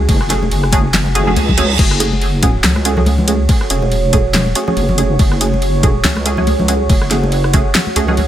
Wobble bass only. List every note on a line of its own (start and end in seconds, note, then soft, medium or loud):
0.09 0.50 F#1 loud
0.51 1.35 F#1 loud
1.36 1.77 C#2 loud
1.79 2.63 F#1 medium
2.64 3.48 C#2 loud
3.70 4.54 E1 loud
4.77 5.18 F#1 loud
5.19 5.78 F#1 loud
5.78 6.03 F1 loud
6.04 6.88 C#2 loud
6.90 7.73 F#1 loud
7.96 8.28 C#2 loud